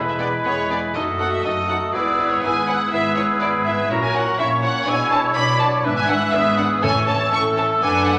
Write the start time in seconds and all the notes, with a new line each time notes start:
Already playing: E1 E2 G#3 E4 B4 B5
0.08 E5
0.19 B3 G#4 D5
0.45 E1 E2 B3 G#4 C#5
0.71 B3 G#4 D5
0.94 F#1 F#2 A3 D#4 F#4 A4 D#5 D#6
1.19 D#4 A4 F#5
1.32 E5
1.42 F#1 F#2 A3 D#4 F#4 A4 D#5 D#6
1.67 D#4 A4 F#5
1.93 G#1 G#2 B3 E4 G#4 B4 D5 E6
2.19 E4 B4
2.31 C#5
2.42 G#1 G#2 B3 E4 G#4 B4 G#5 E6
2.68 E4 B4 F#5
2.92 G#1 G#2 B3 E4 G#4 B4 E5 E6
3.15 E4 B4 C#5
3.40 G#1 G#2 E4 B4 D5
3.64 E4 B4 E5
3.89 A#1 A#2 F#3 C#4 E4 F#4 A#4 C#5 C#6
4.02 G#5
4.14 E4 C#5 F#5
4.39 A#1 A#2 A#3 C#4 E4 C#5 E5
4.63 E4 C#5 F#5
4.86 B1 B2 G#3 B3 D4 E4 B4 G#5 E6
5.10 D4 B4 A5
5.35 B1 B2 F#3 D4 B4 D5 B5 D6
5.59 D4 B4 A5
5.84 G#1 G#2 E3 B3 D4 B4 E5 F#6
5.97 G#5
6.09 D4 B4 F#5
6.32 G#1 G#2 B3 D4 G#4 B4 E5 E6
6.58 D4 B4 F#5
6.82 A1 A2 E3 A3 C#4 A4 C#5 G#5 E6
7.07 C#4 A4 A5
7.32 A1 A2 A3 C#4 A4 C#6
7.57 C#4 A4 A5
7.82 F#1 F#2 A3 B3 D4 A4 B4 G#5 D6
8.06 F#5